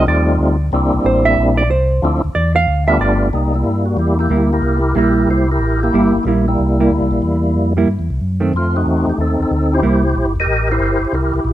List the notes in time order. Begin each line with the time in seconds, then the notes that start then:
0.07 D#2 G3 A3 C4 D#4 F4 D5
0.39 D2
0.72 C2 G3 A#3 C4 D4 E4
0.94 C2
1.04 A1 C5
1.25 E5
1.37 A#1
1.57 D5
1.69 C2 C5
2.02 D2 F3 A3 C4 D4 E4
2.24 D2
2.35 E2 D5
2.56 F5
2.68 D2
2.87 G3 A3 B3 D4 F4 E5
3.00 G1 D5
3.33 C2 G3 A#3 D#4
3.54 G3 A#3 E4
3.64 G2
3.85 F#4
3.97 E2 A#3 E4 G4
4.19 A#3 E4 G4
4.29 D2 G3 A#3 E4
4.53 E4 G4 A#4
4.62 C2
4.95 A#1 G3 A#3 E4 G4 A#4
5.27 C2 E4 G4 C5
5.51 E4 G4 A#4
5.59 A1
5.83 A#3 E4 G4
5.93 G1 G3 A#3 E4
6.14 G1
6.23 A#1 G3 D#4 E4
6.28 A#3 E4
6.48 G3 A#3 E4
6.58 C2
6.80 G3 A#3 E4
6.90 D2
7.01 C2
7.11 A#1
7.22 E2
7.54 F2
7.77 G3 A#3 E4
7.88 G2
7.99 E2
8.10 C2
8.21 F#2
8.40 D#3 A3 C4
8.54 F2 A3 C4 F4
8.76 A3 D#4 F#4
8.86 E2
9.07 E2 G4
9.17 D#2 C4 D#4 A4
9.40 D#2 A4
9.51 D2 A4
9.73 E4 G4 C5
9.82 C2 G3 A#3 E4
10.15 A#1 C5
10.26 G1
10.36 E1
10.40 G4 A#4 D#5
10.46 A1
10.71 E4 G4 C5
10.79 G1
11.00 G1
11.05 C5
11.12 C2 E4 G4 A#4
11.34 C2 A#4
11.44 A#1
11.49 G4